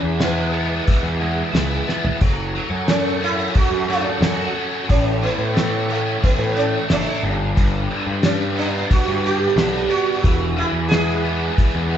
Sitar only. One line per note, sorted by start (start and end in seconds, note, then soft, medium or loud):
0.23 1.51 B3 medium
2.89 3.23 C#4 medium
3.24 3.54 E4 medium
3.57 3.87 F#4 medium
3.90 4.85 C#4 medium
4.90 5.20 C#4 medium
5.23 5.85 B3 medium
5.90 5.99 A3 medium
6.24 6.56 B3 medium
6.57 6.66 C#4 medium
6.92 7.26 D4 medium
7.26 7.37 C#4 medium
8.24 8.33 C#4 medium
8.59 8.89 D4 medium
8.91 9.25 F#4 medium
9.26 9.90 G4 medium
9.90 10.58 F#4 medium
10.58 10.67 E4 medium
10.89 11.98 G#4 medium